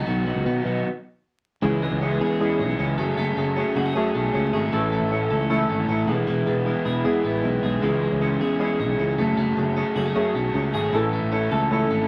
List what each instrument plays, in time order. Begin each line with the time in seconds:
Already playing: clean electric guitar B3 D#4
0.06 fretless electric bass B1, overdriven electric guitar B2 D#3 F#3 B3 D#4, clean electric guitar F#3
0.26 overdriven electric guitar D#3 F#3 B3 D#4, clean electric guitar F#3
0.36 fretless electric bass C#2
0.45 fretless electric bass B2, clean electric guitar B3
0.64 fretless electric bass B2, overdriven electric guitar D#3 F#3 B3 D#4, clean electric guitar F#3
1.62 fretless electric bass C#2, clean electric guitar E3, synth keys G#3 C#4 E4 G#4, overdriven electric guitar G#3 C#4 E4 G#4
1.82 synth keys G#3 C#4 E4 B4, clean electric guitar G#3
1.91 fretless electric bass C#2
2.01 overdriven electric guitar G#3 C#4 E4 G#4, synth keys G#3 C#4 E4 G#4, clean electric guitar C#4
2.20 fretless electric bass E2, overdriven electric guitar G#3 C#4 E4 G#4, synth keys G#3 C#4 E4 G#4, clean electric guitar G#4
2.39 overdriven electric guitar G#3 C#4 E4 G#4, synth keys G#3 C#4 E4 G#4, clean electric guitar C#4
2.59 fretless electric bass B1, clean electric guitar G#3, synth keys G#3 C#4 E4 G#4
2.68 overdriven electric guitar C#4 E4 G#4
2.79 fretless electric bass C#2, synth keys G#3 C#4 E4 G#4, clean electric guitar C#4
2.97 fretless electric bass F#1, overdriven electric guitar F#3 A3 C#4 G#4, clean electric guitar A3, synth keys A3 C#4 F#4 G#4
3.17 fretless electric bass F#1, overdriven electric guitar F#3 A3 C#4 G#4, clean electric guitar A3
3.37 fretless electric bass F#1, clean electric guitar A3, synth keys A3 C#4 F#4 G#4
3.55 overdriven electric guitar F#3 A3 C#4 G#4, synth keys A3 C#4 F#4 G#4, clean electric guitar C#4
3.75 fretless electric bass F#1, overdriven electric guitar F#3 A3 C#4 G#4, synth keys A3 C#4 F#4 G#4, clean electric guitar F#4
3.86 clean electric guitar G#4
3.94 fretless electric bass F#2, overdriven electric guitar F#3 A3 C#4 G#4, synth keys A3 C#4 F#4 G#4, clean electric guitar C#4
4.14 fretless electric bass B1, clean electric guitar A3, synth keys A3 C#4 F#4 G#4
4.23 overdriven electric guitar F#3 A3 C#4 G#4
4.34 fretless electric bass C#2, synth keys A3 C#4 F#4 G#4, clean electric guitar C#4
4.53 fretless electric bass G#1, overdriven electric guitar F#3 A3 C#4 G#4, synth keys A3 C#4 F#4 G#4, clean electric guitar G#4
4.72 fretless electric bass A1, overdriven electric guitar E3 A3 C#4 E4, clean electric guitar E3, synth keys A3 C#4 E4 A4
4.91 synth keys A3 C#4 E4 A4, clean electric guitar A3
5.02 fretless electric bass A1
5.11 overdriven electric guitar E3 A3 C#4 E4, synth keys A3 C#4 E4 A4, clean electric guitar C#4
5.30 fretless electric bass C#2, overdriven electric guitar E3 A3 C#4 E4, synth keys A3 C#4 E4 A4, clean electric guitar A4
5.49 overdriven electric guitar E3 A3 C#4 E4, synth keys A3 C#4 E4 A4, clean electric guitar C#4
5.68 fretless electric bass G#1, synth keys A3 E4 A4, clean electric guitar A3
5.79 overdriven electric guitar A3 C#4 E4
5.88 fretless electric bass A1, synth keys A3 C#4 E4 A4, clean electric guitar C#4
6.07 fretless electric bass E1, clean electric guitar E3, overdriven electric guitar E3 G#3 B3 E4, synth keys G#3 B3 E4 G#4
6.27 fretless electric bass E1, overdriven electric guitar E3 G#3 B3 E4, clean electric guitar E3
6.46 fretless electric bass E1, synth keys G#3 B3 E4 G#4, clean electric guitar B3
6.65 overdriven electric guitar E3 G#3 B3 E4, synth keys G#3 B3 E4 G#4, clean electric guitar E4
6.85 fretless electric bass E1, overdriven electric guitar E3 G#3 B3 E4, synth keys G#3 B3 E4 G#4 B5, clean electric guitar G#4
7.04 fretless electric bass E2, overdriven electric guitar E3 G#3 B3 E4, synth keys G#3 B3 E4 G#4 G#5, clean electric guitar E4
7.23 fretless electric bass A1, synth keys G#3 B3 E4 G#4 E5, clean electric guitar B3
7.34 overdriven electric guitar G#3 B3 E4
7.42 fretless electric bass B1, synth keys G#3 B3 E4 G#4 D#5, clean electric guitar E4
7.62 fretless electric bass B1, overdriven electric guitar E3 G#3 B3 E4, synth keys G#3 B3 E4 G#4, clean electric guitar G#4
7.82 fretless electric bass C#2, overdriven electric guitar C#3 G#3 C#4 E4, clean electric guitar E3, synth keys G#3 C#4 E4 G#4
8.01 synth keys G#3 C#4 E4 G#4, clean electric guitar G#3
8.12 fretless electric bass C#2
8.20 overdriven electric guitar C#3 G#3 C#4 E4, synth keys G#3 C#4 E4 G#4, clean electric guitar C#4
8.40 fretless electric bass E2, overdriven electric guitar C#3 G#3 C#4 E4, synth keys G#3 C#4 E4 G#4, clean electric guitar G#4
8.59 overdriven electric guitar C#3 G#3 C#4 E4, synth keys G#3 C#4 E4 G#4, clean electric guitar C#4
8.79 fretless electric bass B1, synth keys G#3 C#4 E4, clean electric guitar G#3
8.89 overdriven electric guitar G#3 C#4 E4
8.99 fretless electric bass C#2, synth keys G#3 C#4 E4 G#4, clean electric guitar C#4
9.18 fretless electric bass F#1, overdriven electric guitar F#3 A3 C#4 G#4, synth keys A3 C#4 F#4 G#4, clean electric guitar A3
9.37 fretless electric bass F#1, overdriven electric guitar F#3 A3 C#4 G#4, clean electric guitar A3
9.57 fretless electric bass F#1, clean electric guitar A3, synth keys A3 C#4 F#4 G#4
9.76 overdriven electric guitar F#3 A3 C#4 G#4, synth keys A3 C#4 F#4 G#4, clean electric guitar C#4
9.96 fretless electric bass F#1, overdriven electric guitar F#3 A3 C#4 G#4, synth keys A3 C#4 F#4 G#4, clean electric guitar F#4
10.06 clean electric guitar G#4
10.15 fretless electric bass F#2, overdriven electric guitar F#3 A3 C#4 G#4, synth keys A3 C#4 F#4 G#4, clean electric guitar C#4
10.35 fretless electric bass B1, synth keys A3 C#4 F#4 G#4, clean electric guitar A3
10.44 overdriven electric guitar A3 C#4 G#4
10.54 fretless electric bass C#2, synth keys A3 C#4 F#4 G#4, clean electric guitar C#4
10.73 fretless electric bass G#1, overdriven electric guitar F#3 A3 C#4 G#4, synth keys A3 C#4 F#4 G#4, clean electric guitar G#4
10.92 fretless electric bass A1, overdriven electric guitar E3 A3 C#4 E4, clean electric guitar E3, synth keys A3 C#4 E4 A4
11.12 synth keys A3 C#4 E4 A4, clean electric guitar A3
11.22 fretless electric bass A1
11.32 overdriven electric guitar E3 A3 C#4 E4, synth keys A3 C#4 E4 A4, clean electric guitar C#4
11.51 fretless electric bass C#2, overdriven electric guitar E3 A3 C#4 E4, synth keys A3 C#4 E4 A4, clean electric guitar A4
11.70 overdriven electric guitar E3 A3 C#4 E4, synth keys A3 C#4 E4 A4, clean electric guitar C#4
11.90 fretless electric bass G#1, synth keys A3 C#4 E4 A4, clean electric guitar A3
12.00 overdriven electric guitar A3 C#4 E4